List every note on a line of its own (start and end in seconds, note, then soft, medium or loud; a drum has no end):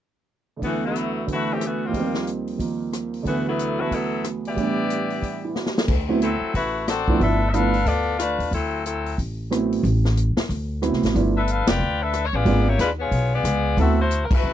0.57 1.90 D2 soft
0.57 1.25 D3 soft
0.62 1.27 E3 soft
0.62 0.82 E3 medium
0.62 1.94 F#3 soft
0.62 0.81 A3 medium
0.62 0.82 B3 medium
0.62 0.82 F#4 medium
0.62 kick soft
0.62 open hi-hat soft
0.67 1.96 B3 soft
0.85 1.26 F#3 medium
0.85 1.26 A3 medium
0.85 1.26 B3 medium
0.85 1.26 E4 medium
0.95 closed hi-hat soft
1.27 1.93 D3 soft
1.27 1.93 E3 soft
1.27 1.94 A3 soft
1.27 kick soft
1.27 open hi-hat soft
1.33 1.50 A3 medium
1.33 1.51 E4 medium
1.33 1.50 F#4 medium
1.33 1.50 B4 medium
1.53 1.63 E3 medium
1.53 1.63 A3 medium
1.53 1.63 C4 medium
1.53 1.63 G4 medium
1.61 cross-stick medium
1.61 closed hi-hat soft
1.66 1.83 E3 medium
1.66 1.84 A3 medium
1.66 1.83 B3 medium
1.66 1.83 F#4 medium
1.86 3.22 D#2 soft
1.86 2.29 G3 medium
1.86 2.29 A#3 medium
1.86 2.29 C4 medium
1.86 2.29 F4 medium
1.91 2.56 D#3 soft
1.91 2.58 F3 soft
1.91 kick soft
1.91 open hi-hat soft
1.96 3.26 G3 soft
1.96 3.28 C4 medium
2.14 snare soft
2.27 closed hi-hat soft
2.47 open hi-hat soft
2.58 3.24 D#3 soft
2.58 3.25 F3 soft
2.58 3.26 A#3 soft
2.58 kick soft
2.58 open hi-hat soft
2.93 cross-stick medium
2.93 closed hi-hat soft
3.14 open hi-hat soft
3.22 4.55 D2 soft
3.22 4.56 D3 soft
3.22 3.78 E3 soft
3.22 kick soft
3.26 3.44 E3 medium
3.26 3.79 F#3 soft
3.26 3.44 A3 medium
3.26 3.44 B3 medium
3.26 3.80 B3 medium
3.26 3.44 F#4 medium
3.26 open hi-hat soft
3.48 3.79 F#3 medium
3.48 3.79 A3 medium
3.48 3.80 B3 medium
3.48 3.79 E4 medium
3.59 closed hi-hat soft
3.79 4.54 E3 soft
3.79 4.57 F#3 soft
3.79 4.57 A3 soft
3.79 3.92 A3 medium
3.79 4.56 B3 soft
3.79 3.92 E4 medium
3.79 3.92 F#4 medium
3.79 3.92 B4 medium
3.91 4.25 F#3 medium
3.91 4.25 B3 medium
3.91 4.25 E4 medium
3.91 4.25 A4 medium
3.91 kick soft
3.91 open hi-hat soft
4.24 cross-stick medium
4.24 closed hi-hat soft
4.45 5.53 B3 medium
4.45 5.53 E4 medium
4.45 5.53 G4 medium
4.45 5.53 D5 medium
4.45 open hi-hat soft
4.54 5.87 A2 soft
4.54 5.88 E3 soft
4.54 5.88 G3 soft
4.54 5.89 B3 soft
4.54 kick soft
4.54 open hi-hat soft
4.59 5.89 D4 medium
4.90 closed hi-hat soft
5.10 open hi-hat soft
5.23 kick soft
5.23 open hi-hat soft
5.44 5.61 E4 soft
5.55 5.74 F#4 soft
5.55 snare soft
5.66 5.83 G4 soft
5.66 snare soft
5.78 5.94 A4 soft
5.78 snare medium
5.88 6.37 D2 medium
5.88 kick medium
5.88 crash medium
6.09 6.20 F#3 medium
6.09 6.20 A3 medium
6.09 6.20 B3 medium
6.09 6.20 C4 medium
6.09 6.20 E4 medium
6.22 6.52 F#3 medium
6.22 6.52 C4 medium
6.22 6.53 E4 medium
6.22 6.53 A4 medium
6.22 closed hi-hat medium
6.41 muted upright bass stroke soft
6.54 7.16 A1 medium
6.54 6.86 A3 medium
6.54 6.86 E4 medium
6.54 6.86 F#4 medium
6.54 6.86 B4 medium
6.54 kick soft
6.54 open hi-hat soft
6.88 7.19 C4 medium
6.88 7.18 F#4 medium
6.88 7.19 A4 medium
6.88 7.18 D5 medium
6.88 cross-stick medium
6.88 snare soft
6.88 closed hi-hat soft
7.08 7.19 F3 medium
7.08 7.19 A3 medium
7.08 7.19 B3 medium
7.08 7.19 D4 medium
7.08 7.19 E4 medium
7.08 kick medium
7.20 7.83 G1 medium
7.20 7.38 F3 soft
7.20 7.38 A3 soft
7.20 7.38 B3 soft
7.20 7.38 D4 soft
7.20 7.49 D4 medium
7.20 7.39 E4 medium
7.20 7.49 A4 medium
7.20 7.49 B4 medium
7.20 7.48 E5 medium
7.20 kick soft
7.20 open hi-hat soft
7.50 7.71 F3 soft
7.50 7.71 A3 soft
7.50 7.71 B3 soft
7.50 7.71 D4 soft
7.50 7.54 E5 medium
7.54 7.87 D4 medium
7.54 7.72 E4 medium
7.54 7.85 A4 medium
7.54 7.86 B4 medium
7.54 7.87 F5 loud
7.54 closed hi-hat soft
7.74 open hi-hat soft
7.86 8.35 D2 medium
7.86 8.19 B3 medium
7.86 8.18 F4 medium
7.86 8.19 A4 medium
7.86 8.19 D5 medium
7.86 kick soft
7.86 open hi-hat soft
8.19 8.49 A3 medium
8.19 8.50 D4 medium
8.19 8.50 F4 medium
8.19 8.50 B4 medium
8.19 cross-stick medium
8.19 closed hi-hat medium
8.38 8.50 D#2 medium
8.38 open hi-hat soft
8.51 9.14 D2 medium
8.51 8.85 F#3 medium
8.51 8.85 C4 medium
8.51 8.85 E4 medium
8.51 8.85 A4 medium
8.51 kick soft
8.51 open hi-hat soft
8.86 9.16 F#3 medium
8.86 9.16 C4 medium
8.86 9.16 E4 medium
8.86 9.16 A4 medium
8.86 closed hi-hat soft
9.06 open hi-hat soft
9.18 9.80 A1 medium
9.18 kick soft
9.18 open hi-hat soft
9.50 9.83 F#3 medium
9.50 9.83 A3 soft
9.50 9.84 B3 soft
9.50 9.84 C4 soft
9.50 9.84 E4 medium
9.50 cross-stick medium
9.50 closed hi-hat soft
9.72 open hi-hat soft
9.83 10.33 A1 medium
9.83 kick soft
9.83 open hi-hat soft
10.05 snare soft
10.17 closed hi-hat medium
10.36 muted upright bass stroke soft
10.36 snare medium
10.36 open hi-hat soft
10.49 10.90 D2 medium
10.49 kick soft
10.49 open hi-hat soft
10.82 11.15 F#3 soft
10.82 11.14 A3 soft
10.82 11.13 B3 soft
10.82 11.15 C4 soft
10.82 11.14 E4 medium
10.82 cross-stick medium
10.82 closed hi-hat soft
10.92 11.02 C2 medium
10.92 snare soft
11.03 11.14 A1 medium
11.03 snare soft
11.03 open hi-hat soft
11.15 11.64 G1 medium
11.15 11.33 F3 medium
11.15 11.33 A3 soft
11.15 11.33 B3 medium
11.15 11.33 D4 soft
11.15 11.33 E4 medium
11.15 kick soft
11.15 open hi-hat soft
11.36 11.48 D4 medium
11.36 11.48 A4 medium
11.36 11.48 B4 medium
11.36 11.48 E5 loud
11.48 11.69 D4 medium
11.48 11.69 A4 medium
11.48 11.67 B4 medium
11.48 11.69 F5 medium
11.48 closed hi-hat soft
11.67 11.79 F1 medium
11.67 12.01 F4 medium
11.67 12.01 B4 medium
11.67 12.01 D5 medium
11.67 12.01 G5 loud
11.67 snare medium
11.67 ride medium
11.80 12.29 D2 medium
12.02 12.25 D4 medium
12.02 12.26 A4 medium
12.02 12.26 B4 medium
12.02 12.26 E5 medium
12.13 cross-stick medium
12.13 closed hi-hat medium
12.26 12.34 C#5 medium
12.33 12.45 A1 medium
12.33 12.67 B3 medium
12.33 12.67 F4 medium
12.33 12.67 G#4 medium
12.33 12.67 D5 medium
12.45 12.76 G#1 medium
12.45 12.64 G#3 medium
12.45 12.64 A#3 soft
12.45 12.64 B3 soft
12.45 12.64 D4 medium
12.45 12.64 F4 medium
12.45 kick soft
12.45 open hi-hat soft
12.68 12.80 A#3 medium
12.68 12.80 E4 medium
12.68 12.80 G4 medium
12.68 12.80 C#5 medium
12.79 13.09 D#2 medium
12.79 12.89 G#3 medium
12.79 12.89 D4 medium
12.79 12.89 F4 medium
12.79 12.90 B4 medium
12.79 snare soft
12.79 closed hi-hat soft
13.00 13.30 B3 medium
13.00 13.30 F4 medium
13.00 13.31 G#4 medium
13.00 13.31 C#5 medium
13.11 13.42 B1 medium
13.11 kick soft
13.11 open hi-hat soft
13.34 13.79 B3 medium
13.34 13.78 F4 medium
13.34 13.79 G#4 medium
13.34 13.79 D5 loud
13.44 13.75 C#2 medium
13.44 cross-stick medium
13.44 closed hi-hat medium
13.77 14.27 D2 medium
13.77 13.96 A3 medium
13.77 13.96 B3 soft
13.77 13.96 C4 soft
13.77 13.98 C4 medium
13.77 13.96 E4 soft
13.77 13.96 F#4 medium
13.77 13.98 F#4 medium
13.77 13.98 A4 medium
13.77 13.98 E5 medium
13.77 kick soft
13.77 open hi-hat soft
14.01 14.22 A3 medium
14.01 14.22 E4 medium
14.01 14.22 F#4 medium
14.01 14.22 C5 medium
14.11 closed hi-hat soft
14.24 14.32 A#4 medium
14.31 14.53 A3 medium
14.31 14.53 E4 medium
14.31 14.53 B4 medium
14.31 kick medium
14.31 crash medium
14.35 14.53 F#4 medium
14.43 14.53 A1 medium